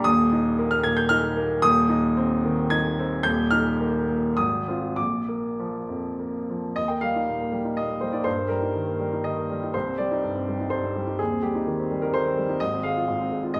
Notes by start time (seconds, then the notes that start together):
0.04 D#1 D#2 D#6
0.33 D#4
0.59 A#3
0.71 F6
0.83 A#2 G#6
0.97 G6
1.09 D#4 F6
1.37 A#3
1.62 D#1 D#2 D#6
1.89 D#4
2.17 C4
2.45 D#3
2.70 D#4 G#6
2.99 C4
3.23 D#1 D#2 G6
3.51 D#4 F6
3.81 A#3
4.09 A#2
4.37 G#1 D#6
4.68 C4 F4
4.96 A#1 D6
5.28 A#3
5.59 F3
5.89 F2
6.19 A#3
6.49 F3
6.76 D#2 D#5
6.88 A#3 G5
7.01 G3 F5
7.16 D#4
7.28 A#2
7.41 A#3
7.52 G3
7.65 D#4
7.77 A#2 D#5
7.90 A#3
8.01 G3 C5
8.12 D#4 D5
8.24 G2 C5
8.37 A#3
8.49 G3 A#4
8.62 D#4
8.75 D#3
8.87 A#3
9.00 G3
9.13 D#4
9.24 D#3 D#5
9.38 A#3
9.51 G3
9.63 D#4
9.74 C2 C5
9.87 C4
9.98 G3 D5
10.12 D#4
10.23 G2
10.35 C4
10.48 G3
10.60 D#4
10.70 G2 C5
10.84 C4
10.96 G3
11.07 D#4
11.19 D#2 G#4
11.31 C4
11.43 G3 G4
11.55 D#4
11.66 D#3
11.79 C4
11.91 G3
12.02 D#4 A#4
12.14 D#3 C5
12.26 C4
12.38 G3
12.49 D#4
12.60 G#1 D#5
12.73 C4
12.83 G#3 F5
12.96 F4
13.08 G#2
13.21 C4
13.32 G#3
13.43 F4
13.54 G#2 D#5